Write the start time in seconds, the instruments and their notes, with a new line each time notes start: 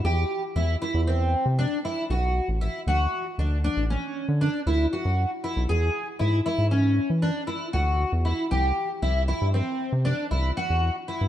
0.04 analog synth bass E2, twelve-string acoustic guitar G4
0.56 analog synth bass E2, twelve-string acoustic guitar E4
0.82 twelve-string acoustic guitar E4
0.94 analog synth bass E2
1.07 twelve-string acoustic guitar C4
1.46 analog synth bass C3
1.59 twelve-string acoustic guitar D4
1.85 twelve-string acoustic guitar E4
2.10 analog synth bass B1, twelve-string acoustic guitar F#4
2.48 analog synth bass A1
2.61 twelve-string acoustic guitar E4
2.87 analog synth bass D2, twelve-string acoustic guitar F#4
3.38 analog synth bass D2, twelve-string acoustic guitar D4
3.64 twelve-string acoustic guitar D4
3.77 analog synth bass A1
3.90 twelve-string acoustic guitar C#4
4.29 analog synth bass D3
4.41 twelve-string acoustic guitar D4
4.66 analog synth bass D2, twelve-string acoustic guitar E4
4.93 twelve-string acoustic guitar F#4
5.05 analog synth bass F#2
5.44 twelve-string acoustic guitar E4
5.57 analog synth bass B1
5.69 analog synth bass E2, twelve-string acoustic guitar G#4
6.19 analog synth bass G#2, twelve-string acoustic guitar E4
6.46 twelve-string acoustic guitar E4
6.58 analog synth bass G#2
6.71 twelve-string acoustic guitar C#4
7.10 analog synth bass E3
7.22 twelve-string acoustic guitar D4
7.47 twelve-string acoustic guitar E4
7.73 analog synth bass D2, twelve-string acoustic guitar F#4
8.12 analog synth bass E2
8.25 twelve-string acoustic guitar E4
8.51 analog synth bass C2, twelve-string acoustic guitar G4
9.02 analog synth bass C2, twelve-string acoustic guitar E4
9.28 twelve-string acoustic guitar E4
9.42 analog synth bass G2
9.54 twelve-string acoustic guitar C4
9.92 analog synth bass C3
10.05 twelve-string acoustic guitar D4
10.31 analog synth bass C2, twelve-string acoustic guitar E4
10.57 twelve-string acoustic guitar F#4
10.70 analog synth bass E2
11.08 twelve-string acoustic guitar E4
11.21 analog synth bass G2